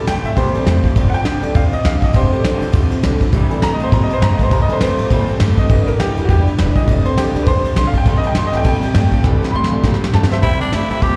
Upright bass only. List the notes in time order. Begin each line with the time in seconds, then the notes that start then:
0.07 G2
0.24 A2
0.37 A#2
0.54 muted upright bass stroke
0.66 E2
0.84 muted upright bass stroke
0.96 F1
1.13 muted upright bass stroke
1.26 C2
1.43 D2
1.55 D2
1.73 muted upright bass stroke
1.85 C2
2.02 muted upright bass stroke
2.15 F1
2.32 muted upright bass stroke
2.44 C2
2.61 D2
2.74 D2
2.91 muted upright bass stroke
3.04 B1
3.21 muted upright bass stroke
3.33 C2
3.51 muted upright bass stroke
3.62 G2
3.80 A2
3.92 A#2
4.09 muted upright bass stroke
4.22 G2
4.51 C2
4.69 muted upright bass stroke
4.81 G2
4.99 A2
5.10 A#2
5.28 muted upright bass stroke
5.40 G2
5.70 G1
5.88 muted upright bass stroke
5.99 D2
6.17 E2
6.29 F2
6.46 muted upright bass stroke
6.59 E1
6.88 F1
7.05 muted upright bass stroke
7.17 C2
7.34 D2
7.47 D2
7.63 muted upright bass stroke
7.76 B1
8.06 C2
8.24 muted upright bass stroke
8.36 G2
8.53 A2
8.65 A#2
8.83 muted upright bass stroke
8.95 G2
9.24 C2
9.54 G2
9.71 A2
9.84 A#2
10.01 muted upright bass stroke
10.14 G2
10.31 muted upright bass stroke
10.43 C2
10.73 G2
10.90 A2
11.02 A#2